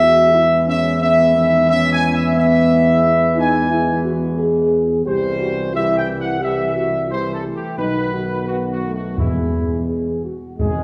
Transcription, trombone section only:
0.00 4.90 E3 medium
0.00 4.90 G#3 medium
5.07 5.71 E3 medium
5.07 5.71 G3 medium
5.73 6.38 E3 medium
5.73 6.38 G3 medium
6.42 7.06 E3 medium
6.42 7.06 G3 medium
7.11 7.74 E3 medium
7.11 7.42 G3 medium
7.44 7.78 A3 medium
7.79 8.46 D#3 medium
7.79 8.44 B3 medium
8.48 9.14 D#3 medium
8.48 8.80 B3 soft
8.84 9.16 A3 soft
9.17 10.21 E3 soft
9.17 10.21 G#3 soft
10.58 10.84 G#3 medium

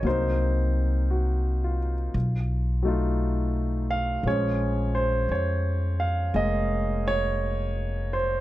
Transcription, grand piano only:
0.03 2.14 F#3 soft
0.03 2.14 A#3 soft
0.03 2.15 C4 soft
0.03 1.76 C5 medium
0.08 2.16 D#4 soft
1.10 1.93 F#4 soft
1.64 2.38 F4 soft
2.83 4.24 F#3 soft
2.83 4.25 A3 soft
2.83 4.25 D#4 soft
2.88 4.26 F4 soft
3.91 4.26 F5 medium
4.26 8.40 F3 soft
4.26 6.32 G#3 soft
4.26 8.40 C#4 soft
4.26 4.92 C#5 medium
4.95 5.31 C5 medium
5.32 6.03 C#5 medium
6.00 6.35 F5 medium
6.34 8.40 G#3 soft
6.34 8.40 A#3 soft
6.34 7.01 D#5 medium
7.08 8.14 C#5 medium
8.13 8.40 C5 medium

